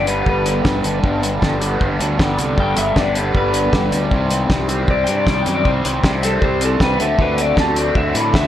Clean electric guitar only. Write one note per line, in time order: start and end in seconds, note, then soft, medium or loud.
0.08 0.26 B4 medium
0.29 1.03 B4 medium
2.60 2.77 G5 medium
2.78 2.98 E5 medium
2.98 3.18 D5 medium
3.18 3.35 B4 medium
3.37 4.11 B4 loud
4.91 5.02 D5 medium
5.04 5.15 G5 medium
5.17 5.28 D5 medium
5.30 5.41 D5 medium
5.43 5.53 G5 medium
5.55 5.69 D5 medium
5.69 5.86 C5 loud
6.25 6.42 A4 loud
6.44 6.62 C5 medium
6.64 6.81 A4 medium
6.84 7.01 B4 medium
7.02 7.19 E5 medium
7.22 7.41 B4 medium
7.41 7.58 D5 medium
7.60 7.77 A5 medium
7.78 7.96 D5 medium
7.97 8.15 E5 loud
8.17 8.35 B5 medium
8.35 8.47 E5 medium